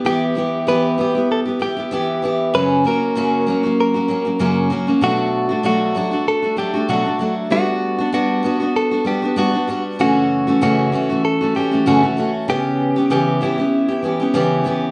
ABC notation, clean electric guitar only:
X:1
M:4/4
L:1/16
Q:"Swing 16ths" 1/4=97
K:Bm
V:1 name="Clean electric guitar"
G4 B4 A2 G4 z2 | B2 ^A6 A6 z2 | F4 F4 A2 G2 F3 z | F4 F4 A2 G2 F3 z |
F4 F4 A2 G2 F3 z | G4 G2 E8 z2 |]